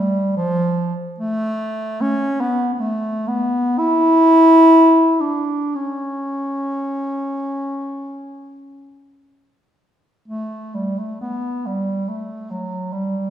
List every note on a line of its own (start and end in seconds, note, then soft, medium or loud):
0.00 0.36 G3 medium
0.37 0.94 F3 loud
1.20 2.03 A3 loud
2.01 2.42 C#4 loud
2.41 2.73 B3 loud
2.74 2.81 B3 medium
2.80 3.29 A3 loud
3.28 3.80 B3 loud
3.79 5.22 E4 loud
5.21 5.77 D4 medium
5.75 9.05 C#4 medium
10.28 10.76 A3 medium
10.75 11.00 G3 medium
10.99 11.20 A3 medium
11.21 11.68 B3 medium
11.66 12.10 G3 medium
12.09 12.52 A3 medium
12.51 12.94 F#3 medium
12.93 13.30 G3 medium